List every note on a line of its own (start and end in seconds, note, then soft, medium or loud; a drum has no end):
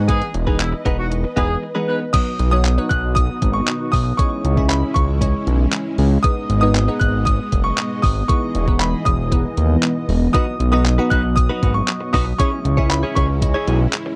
0.00 0.22 G#2 medium
0.00 2.10 G#5 medium
0.00 2.10 D#6 medium
0.08 0.37 E3 medium
0.08 0.37 G#3 medium
0.08 0.28 B3 medium
0.08 0.38 B3 medium
0.08 0.38 D#4 medium
0.08 0.21 D#4 medium
0.08 0.26 G#4 loud
0.08 0.21 G#4 medium
0.08 2.12 B4 medium
0.08 0.20 B4 medium
0.08 2.12 D#5 medium
0.08 kick loud
0.08 closed hi-hat loud
0.21 muted clean electric guitar stroke soft
0.21 closed hi-hat soft
0.34 0.73 E1 loud
0.34 muted clean electric guitar stroke soft
0.34 closed hi-hat medium
0.47 0.76 E3 medium
0.47 0.76 G#3 medium
0.47 0.76 B3 medium
0.47 0.59 B3 medium
0.47 0.76 D#4 medium
0.47 0.59 D#4 medium
0.47 0.56 G#4 medium
0.47 0.59 G#4 medium
0.47 0.60 B4 medium
0.47 kick loud
0.60 0.69 E4 medium
0.60 muted clean electric guitar stroke soft
0.60 clap loud
0.60 closed hi-hat loud
0.73 muted clean electric guitar stroke medium
0.85 1.25 E1 medium
0.85 1.24 E3 medium
0.85 1.24 G#3 medium
0.85 1.05 B3 medium
0.85 1.24 B3 medium
0.85 1.24 D#4 medium
0.85 0.98 D#4 medium
0.85 0.98 G#4 medium
0.85 0.97 B4 medium
0.85 kick loud
0.85 closed hi-hat medium
0.98 1.07 F#4 medium
0.98 muted clean electric guitar stroke medium
1.11 muted clean electric guitar stroke soft
1.11 closed hi-hat medium
1.24 muted clean electric guitar stroke soft
1.36 1.57 E1 loud
1.36 1.66 E3 medium
1.36 1.66 G#3 medium
1.36 1.56 B3 medium
1.36 1.66 B3 medium
1.36 1.49 D#4 medium
1.36 1.66 D#4 medium
1.36 1.55 G#4 medium
1.36 1.49 G#4 medium
1.36 1.48 B4 loud
1.36 kick medium
1.36 closed hi-hat medium
1.49 muted clean electric guitar stroke medium
1.62 muted clean electric guitar stroke soft
1.75 2.04 E3 medium
1.75 2.04 G#3 medium
1.75 2.04 B3 medium
1.75 1.86 B3 medium
1.75 2.04 D#4 medium
1.75 1.87 D#4 medium
1.75 1.88 G#4 medium
1.75 1.88 B4 medium
1.88 2.03 B3 medium
1.88 2.01 D#4 medium
1.88 2.00 G#4 medium
1.88 1.97 B4 medium
1.88 1.99 B4 medium
2.01 muted clean electric guitar stroke soft
2.13 2.43 F#3 medium
2.13 4.17 B3 medium
2.13 2.43 B3 medium
2.13 4.17 D#4 medium
2.13 2.43 D#4 medium
2.13 4.17 F#4 medium
2.13 2.43 F#4 medium
2.13 2.43 B4 medium
2.13 2.50 D#6 loud
2.13 kick loud
2.13 closed hi-hat loud
2.13 crash loud
2.39 2.79 B1 medium
2.39 closed hi-hat medium
2.51 2.71 F#3 medium
2.51 2.71 B3 medium
2.51 2.72 D#4 medium
2.51 2.72 F#4 medium
2.51 2.72 C#5 medium
2.51 2.92 D#6 loud
2.65 clap loud
2.65 closed hi-hat loud
2.78 3.54 F#3 medium
2.78 3.54 B3 medium
2.78 3.55 D#4 medium
2.78 3.55 F#4 medium
2.78 3.55 B4 medium
2.89 3.30 B1 loud
2.89 3.17 F#6 loud
2.89 kick loud
2.89 closed hi-hat medium
3.15 3.51 D#6 loud
3.15 kick loud
3.15 closed hi-hat loud
3.42 3.62 G#1 loud
3.42 kick medium
3.42 closed hi-hat medium
3.53 3.94 C#6 loud
3.68 clap loud
3.68 closed hi-hat medium
3.92 4.13 B1 loud
3.92 4.16 D#6 loud
3.92 kick loud
3.92 open hi-hat medium
4.17 4.48 G#3 medium
4.17 10.30 G#3 medium
4.17 4.48 C#4 medium
4.17 6.22 C#4 medium
4.17 4.48 E4 medium
4.17 6.22 E4 medium
4.17 4.48 G#4 medium
4.17 4.48 C#5 medium
4.17 4.71 C#6 loud
4.17 kick loud
4.17 closed hi-hat loud
4.45 4.84 C#2 medium
4.45 closed hi-hat medium
4.57 5.05 G#3 medium
4.57 5.05 C#4 medium
4.57 5.05 E4 medium
4.57 5.05 G#4 medium
4.57 5.05 E5 medium
4.57 kick loud
4.69 4.96 B5 medium
4.69 clap loud
4.69 closed hi-hat loud
4.94 5.35 C#2 loud
4.94 5.68 C#6 loud
4.94 kick loud
4.94 closed hi-hat medium
5.21 5.98 G#3 medium
5.21 5.98 C#4 medium
5.21 5.98 E4 medium
5.21 5.98 G#4 medium
5.21 5.98 C#5 medium
5.21 kick loud
5.21 closed hi-hat loud
5.47 5.67 B1 loud
5.47 closed hi-hat medium
5.72 clap loud
5.72 closed hi-hat medium
5.98 6.18 C#2 loud
5.98 open hi-hat medium
6.23 6.53 G#3 medium
6.23 8.27 B3 medium
6.23 6.53 B3 medium
6.23 6.53 D#4 medium
6.23 6.53 G#4 medium
6.23 6.53 B4 medium
6.23 12.35 D#5 medium
6.23 6.59 D#6 loud
6.23 kick loud
6.23 closed hi-hat loud
6.50 6.89 G#1 loud
6.50 closed hi-hat medium
6.61 6.82 G#3 medium
6.61 6.82 B3 medium
6.61 6.82 D#4 medium
6.61 6.82 G#4 medium
6.61 6.82 B4 medium
6.61 7.01 D#6 loud
6.75 clap loud
6.75 closed hi-hat loud
6.88 7.65 G#3 medium
6.88 7.65 B3 medium
6.88 7.65 D#4 medium
6.88 7.65 G#4 medium
6.88 7.65 B4 medium
7.00 7.40 G#1 loud
7.00 7.27 F#6 loud
7.00 kick loud
7.00 closed hi-hat medium
7.25 7.66 D#6 loud
7.25 kick loud
7.25 closed hi-hat loud
7.52 7.72 F#1 loud
7.52 kick medium
7.52 closed hi-hat medium
7.64 8.04 C#6 loud
7.78 clap loud
7.78 closed hi-hat medium
8.02 8.23 G#1 loud
8.02 8.29 D#6 loud
8.02 kick loud
8.02 open hi-hat medium
8.28 10.32 E3 medium
8.28 8.58 B3 medium
8.28 12.36 B3 medium
8.28 8.58 D#4 medium
8.28 8.58 E4 medium
8.28 8.58 G#4 medium
8.28 10.33 G#4 medium
8.28 8.58 B4 medium
8.28 8.82 C#6 loud
8.28 kick loud
8.28 closed hi-hat loud
8.55 8.94 E1 loud
8.55 closed hi-hat medium
8.68 9.16 B3 medium
8.68 9.16 D#4 medium
8.68 9.16 E4 medium
8.68 9.16 G#4 medium
8.68 9.16 B4 medium
8.68 kick loud
8.79 9.06 B5 medium
8.79 clap loud
8.79 closed hi-hat loud
9.05 9.45 E1 loud
9.05 9.79 D#6 loud
9.05 kick medium
9.05 closed hi-hat medium
9.31 10.08 B3 medium
9.31 10.08 D#4 medium
9.31 10.08 E4 medium
9.31 10.09 G#4 medium
9.31 10.09 B4 medium
9.31 kick loud
9.31 closed hi-hat loud
9.57 9.77 D#2 loud
9.57 closed hi-hat medium
9.83 clap loud
9.83 closed hi-hat loud
10.09 10.28 E1 loud
10.09 open hi-hat medium
10.33 12.37 F#3 medium
10.33 10.53 B3 medium
10.33 10.63 B3 medium
10.33 10.63 D#4 medium
10.33 10.47 D#4 medium
10.33 10.63 F#4 medium
10.33 10.46 F#4 loud
10.33 10.63 B4 medium
10.33 10.46 B4 medium
10.33 10.63 D#5 medium
10.33 10.70 D#6 loud
10.33 kick loud
10.33 closed hi-hat loud
10.47 muted clean electric guitar stroke medium
10.60 10.99 B1 loud
10.60 muted clean electric guitar stroke soft
10.60 closed hi-hat medium
10.72 10.92 B3 medium
10.72 10.84 B3 medium
10.72 10.92 D#4 medium
10.72 10.85 D#4 medium
10.72 10.92 F#4 medium
10.72 10.85 F#4 medium
10.72 10.85 B4 medium
10.72 10.92 B4 medium
10.72 10.92 D#5 medium
10.72 11.12 D#6 loud
10.86 clap loud
10.86 closed hi-hat loud
10.98 11.75 B3 medium
10.98 11.10 B3 medium
10.98 11.75 D#4 medium
10.98 11.10 D#4 medium
10.98 11.11 F#4 medium
10.98 11.75 F#4 medium
10.98 11.11 B4 medium
10.98 11.75 B4 medium
10.98 11.75 F#5 medium
11.10 11.50 B1 loud
11.10 11.30 B3 medium
11.10 11.24 D#4 medium
11.10 11.23 F#4 loud
11.10 11.23 B4 medium
11.10 11.37 F#6 loud
11.10 kick loud
11.10 closed hi-hat medium
11.24 muted clean electric guitar stroke soft
11.36 11.72 D#6 loud
11.36 muted clean electric guitar stroke soft
11.36 kick loud
11.36 closed hi-hat loud
11.49 11.61 B3 medium
11.49 11.62 D#4 medium
11.49 11.62 F#4 medium
11.49 11.63 B4 medium
11.62 11.82 G#1 loud
11.62 11.77 B3 medium
11.62 11.75 D#4 medium
11.62 11.75 F#4 medium
11.62 11.74 B4 medium
11.62 kick medium
11.62 closed hi-hat medium
11.74 12.15 C#6 medium
11.74 muted clean electric guitar stroke medium
11.88 muted clean electric guitar stroke soft
11.88 clap loud
11.88 closed hi-hat medium
12.01 muted clean electric guitar stroke soft
12.13 12.33 B1 loud
12.13 12.33 B3 medium
12.13 12.26 D#4 loud
12.13 12.26 F#4 loud
12.13 12.25 B4 loud
12.13 12.40 D#6 medium
12.13 kick loud
12.13 open hi-hat medium
12.26 muted clean electric guitar stroke soft
12.38 14.16 G#3 medium
12.38 12.58 C#4 medium
12.38 12.68 C#4 medium
12.38 14.16 C#4 medium
12.38 12.68 E4 medium
12.38 12.52 E4 medium
12.38 14.16 E4 medium
12.38 12.68 G#4 medium
12.38 12.51 G#4 medium
12.38 12.68 C#5 medium
12.38 12.51 C#5 loud
12.38 12.68 E5 medium
12.38 12.92 C#6 loud
12.38 kick loud
12.38 closed hi-hat loud
12.52 muted clean electric guitar stroke medium
12.65 13.04 C#2 medium
12.65 muted clean electric guitar stroke soft
12.65 closed hi-hat medium
12.77 13.26 C#4 medium
12.77 12.89 C#4 medium
12.77 13.26 E4 medium
12.77 12.90 E4 medium
12.77 12.90 G#4 medium
12.77 13.26 G#4 medium
12.77 12.90 C#5 medium
12.77 13.26 C#5 medium
12.77 13.26 E5 medium
12.77 kick loud
12.90 13.17 B5 medium
12.90 muted clean electric guitar stroke soft
12.90 clap loud
12.90 closed hi-hat loud
13.03 13.15 C#4 medium
13.03 13.15 E4 medium
13.03 13.16 G#4 medium
13.03 13.16 C#5 medium
13.15 13.55 C#2 loud
13.15 13.35 C#4 medium
13.15 13.29 E4 medium
13.15 13.28 G#4 loud
13.15 13.28 C#5 loud
13.15 13.89 C#6 medium
13.15 kick loud
13.15 closed hi-hat medium
13.29 muted clean electric guitar stroke medium
13.42 14.16 C#4 medium
13.42 14.16 E4 medium
13.42 14.16 G#4 medium
13.42 14.16 C#5 medium
13.42 14.16 D#5 medium
13.42 muted clean electric guitar stroke soft
13.42 kick loud
13.42 closed hi-hat loud
13.54 13.66 C#4 medium
13.54 13.67 E4 medium
13.54 13.67 G#4 medium
13.54 13.68 C#5 medium
13.67 13.87 B1 loud
13.67 13.83 C#4 medium
13.67 13.80 E4 medium
13.67 13.80 G#4 medium
13.67 13.79 C#5 medium
13.67 closed hi-hat medium
13.80 muted clean electric guitar stroke soft
13.93 muted clean electric guitar stroke soft
13.93 clap loud
13.93 closed hi-hat medium
14.06 muted clean electric guitar stroke medium